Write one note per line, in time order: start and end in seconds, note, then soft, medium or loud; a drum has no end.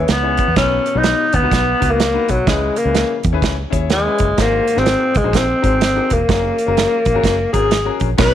0.00 0.12 E3 medium
0.08 0.37 C#2 medium
0.08 0.56 B3 loud
0.08 snare loud
0.08 closed hi-hat medium
0.22 0.44 C#4 medium
0.22 0.45 E4 medium
0.22 0.45 G#4 medium
0.22 0.45 C#5 medium
0.37 kick medium
0.37 closed hi-hat medium
0.48 0.54 E2 medium
0.56 0.78 B1 medium
0.56 1.29 B2 medium
0.56 0.81 B3 medium
0.56 0.99 C#4 medium
0.56 0.82 D#4 medium
0.56 0.82 F#4 medium
0.56 0.82 B4 medium
0.56 kick medium
0.56 snare loud
0.56 closed hi-hat medium
0.86 closed hi-hat medium
0.95 1.13 B1 medium
0.95 1.23 B3 medium
0.95 1.23 D#4 medium
0.95 1.36 D#4 loud
0.95 1.24 F#4 medium
0.95 1.24 B4 medium
1.04 snare loud
1.04 closed hi-hat medium
1.33 1.41 D#2 medium
1.33 1.92 B3 medium
1.33 kick medium
1.33 closed hi-hat medium
1.42 1.49 C#2 medium
1.42 1.62 B3 medium
1.42 1.62 D#4 medium
1.42 1.63 F#4 medium
1.42 1.63 B4 medium
1.51 1.73 B1 medium
1.51 kick medium
1.51 snare medium
1.51 closed hi-hat medium
1.80 2.17 C#2 medium
1.80 1.96 B3 medium
1.80 1.97 D#4 medium
1.80 1.97 F#4 medium
1.80 1.97 B4 medium
1.80 kick medium
1.80 closed hi-hat medium
1.91 2.32 A#3 loud
2.00 snare loud
2.00 closed hi-hat medium
2.14 2.35 B3 medium
2.14 2.36 D#4 medium
2.14 2.36 F#4 medium
2.14 2.36 B4 medium
2.28 2.42 B1 medium
2.28 2.50 F#3 medium
2.28 kick medium
2.28 closed hi-hat medium
2.46 2.69 C#2 medium
2.46 3.20 C#3 medium
2.46 2.79 G#3 medium
2.46 2.72 C#4 medium
2.46 2.72 E4 medium
2.46 2.73 G#4 medium
2.46 2.73 B4 medium
2.46 kick medium
2.46 snare loud
2.46 closed hi-hat medium
2.76 3.25 A#3 medium
2.76 closed hi-hat medium
2.85 3.03 C#2 medium
2.85 3.13 C#4 medium
2.85 3.14 E4 medium
2.85 3.14 G#4 medium
2.85 3.15 B4 medium
2.95 snare medium
2.95 closed hi-hat medium
3.23 3.31 E2 medium
3.23 kick medium
3.23 closed hi-hat medium
3.32 3.42 D#2 medium
3.32 3.53 C#4 medium
3.32 3.53 E4 medium
3.32 3.53 G#4 medium
3.32 3.54 B4 medium
3.42 3.64 C#2 medium
3.42 kick medium
3.42 snare medium
3.42 closed hi-hat medium
3.70 4.07 D#2 medium
3.70 3.87 C#4 medium
3.70 3.87 E4 medium
3.70 3.87 G#4 medium
3.70 3.88 C#5 medium
3.70 kick medium
3.70 closed hi-hat medium
3.90 4.43 G#3 medium
3.90 snare medium
3.90 closed hi-hat medium
4.05 4.26 C#4 medium
4.05 4.27 E4 medium
4.05 4.27 G#4 medium
4.05 4.27 B4 medium
4.18 4.34 F#1 medium
4.18 kick medium
4.18 closed hi-hat medium
4.37 4.60 G#1 loud
4.37 5.11 G#2 medium
4.37 4.80 A#3 medium
4.37 4.63 D#4 medium
4.37 4.63 F#4 medium
4.37 4.64 G#4 medium
4.37 4.64 C5 medium
4.37 kick medium
4.37 snare medium
4.37 closed hi-hat medium
4.67 closed hi-hat medium
4.76 4.94 G#1 medium
4.76 5.19 C4 loud
4.76 5.05 D#4 medium
4.76 5.05 F#4 medium
4.76 5.05 G#4 medium
4.76 5.05 C5 medium
4.76 snare soft
4.86 snare medium
4.86 closed hi-hat medium
5.14 5.22 C2 medium
5.14 5.38 G#3 medium
5.14 kick medium
5.14 closed hi-hat medium
5.24 5.53 A#1 medium
5.24 5.44 D#4 medium
5.24 5.44 F#4 medium
5.24 5.44 G#4 medium
5.24 5.45 C5 medium
5.33 6.15 C4 medium
5.33 kick medium
5.33 snare medium
5.33 closed hi-hat medium
5.62 5.98 G#1 medium
5.62 5.78 D#4 medium
5.62 5.79 F#4 medium
5.62 5.79 G#4 medium
5.62 5.79 C5 medium
5.62 kick medium
5.62 closed hi-hat medium
5.81 snare medium
5.81 closed hi-hat medium
5.96 6.17 D#4 medium
5.96 6.18 F#4 medium
5.96 6.18 G#4 medium
5.96 6.18 A#4 medium
6.10 6.24 E1 medium
6.10 7.52 A#3 medium
6.10 kick medium
6.10 closed hi-hat medium
6.28 6.50 F#1 medium
6.28 6.54 C#4 medium
6.28 6.54 F#4 medium
6.28 6.54 G#4 medium
6.28 6.55 A#4 medium
6.28 kick medium
6.28 snare loud
6.28 closed hi-hat medium
6.58 closed hi-hat medium
6.67 6.85 F#1 medium
6.67 6.95 C#4 medium
6.67 6.96 F#4 medium
6.67 6.96 G#4 medium
6.67 6.96 A#4 medium
6.77 snare medium
6.77 closed hi-hat medium
7.05 7.13 A#1 medium
7.05 kick medium
7.05 closed hi-hat medium
7.14 7.21 G#1 medium
7.14 7.34 C#4 medium
7.14 7.35 F#4 medium
7.14 7.35 G#4 medium
7.14 7.35 A#4 medium
7.24 7.45 F#1 medium
7.24 kick medium
7.24 snare medium
7.24 closed hi-hat medium
7.52 7.88 G#1 medium
7.52 7.69 C#4 medium
7.52 7.69 F#4 medium
7.52 7.97 G#4 medium
7.52 7.69 G#4 medium
7.52 7.69 A#4 medium
7.52 kick medium
7.52 closed hi-hat medium
7.71 snare medium
7.71 closed hi-hat medium
7.85 8.07 C#4 medium
7.85 8.07 F#4 medium
7.85 8.07 G#4 medium
7.85 8.07 A#4 medium
8.00 8.14 A#1 medium
8.00 kick medium
8.00 closed hi-hat medium
8.17 8.34 B1 loud
8.17 8.34 B2 medium
8.17 8.34 C#4 medium
8.17 8.34 D#4 medium
8.17 8.34 F#4 medium
8.17 8.34 B4 medium
8.17 8.34 B4 loud
8.17 8.34 C#5 medium
8.17 kick loud
8.17 snare loud
8.17 crash medium